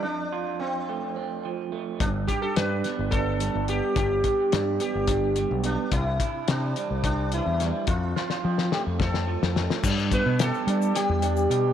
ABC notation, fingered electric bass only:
X:1
M:7/8
L:1/16
Q:1/4=107
K:Gmix
V:1 name="Fingered electric bass" clef=bass
z12 z2 | G,,,2 z2 G,,2 z G,,,4 G,,,2 z | G,,,2 z2 G,,2 z G,,,4 B,,,2 z | C,,2 z2 C,2 z C,,4 E,,2 z |
F,,2 z2 F,2 z F,,4 F,,2 z | G,,3 B,,2 z G,2 z E,,3 B,,2 |]